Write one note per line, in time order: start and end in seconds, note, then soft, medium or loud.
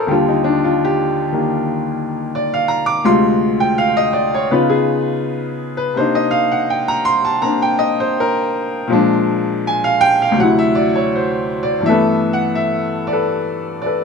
0.00 0.11 F4 medium
0.00 0.12 G#4 medium
0.00 0.12 A4 medium
0.00 0.11 A#4 medium
0.00 0.12 C5 medium
0.00 0.12 D5 medium
0.00 0.12 D#5 medium
0.00 0.11 G5 medium
0.00 0.12 G#5 medium
0.07 3.03 D#2 medium
0.07 3.04 D3 medium
0.07 3.05 G3 medium
0.07 0.33 G4 medium
0.11 0.63 F4 medium
0.28 0.56 D#4 medium
0.44 0.63 D4 medium
0.64 0.80 F4 medium
0.85 1.14 G4 medium
1.32 3.04 D#3 soft
1.32 3.05 A#3 soft
1.32 3.05 G4 medium
2.35 2.57 D5 medium
2.54 2.79 F5 medium
2.68 2.86 A#5 medium
2.86 3.01 D6 medium
3.04 4.50 D2 medium
3.04 4.50 C3 medium
3.04 4.51 G#3 medium
3.04 4.51 F4 medium
3.04 3.63 C6 medium
3.60 3.75 G5 medium
3.78 4.02 F5 medium
3.97 4.23 D#5 medium
4.13 4.31 D5 medium
4.34 4.48 C#5 medium
4.51 5.97 C#3 medium
4.51 5.96 B3 medium
4.51 5.97 D#4 medium
4.51 5.97 F4 medium
4.51 4.75 B4 medium
4.70 4.86 G#4 medium
5.77 5.92 B4 medium
5.94 8.87 C3 medium
5.94 7.41 A#3 medium
5.94 7.43 D4 medium
5.94 6.21 C5 medium
6.00 8.90 D#4 medium
6.15 6.42 D#5 medium
6.31 6.49 F5 medium
6.52 6.66 F#5 medium
6.70 6.94 G5 medium
6.88 7.15 A#5 loud
7.05 7.23 C6 loud
7.25 7.39 A5 medium
7.42 8.88 A#3 medium
7.42 8.89 C4 soft
7.42 8.90 D4 soft
7.42 7.66 A#5 medium
7.62 7.88 G5 medium
7.79 7.96 D#5 medium
8.00 8.13 C5 medium
8.20 8.48 A#4 medium
8.88 10.36 A#2 medium
8.88 10.37 F3 medium
8.88 10.37 G#3 medium
8.93 10.38 D4 medium
9.67 9.89 G#5 medium
9.84 10.10 F5 loud
10.01 10.18 G5 loud
10.22 10.35 F5 medium
10.32 11.84 D2 medium
10.32 11.86 C3 medium
10.38 11.88 F#3 medium
10.38 10.63 F#5 medium
10.43 11.90 E4 medium
10.59 10.85 E5 medium
10.75 10.93 D5 medium
10.95 11.09 C#5 medium
11.15 11.73 C5 medium
11.63 11.85 D5 medium
11.80 14.04 G2 medium
11.80 14.04 E3 medium
11.86 14.04 A3 medium
11.86 13.11 A4 medium
11.86 13.11 B4 medium
11.86 12.38 E5 medium
11.91 14.04 B3 medium
12.33 12.57 F#5 medium
12.55 12.67 E5 medium
13.07 13.79 D5 medium
13.13 13.84 A4 medium
13.13 13.85 B4 medium
13.82 14.04 D5 medium
13.86 14.04 A4 soft
13.86 14.04 B4 soft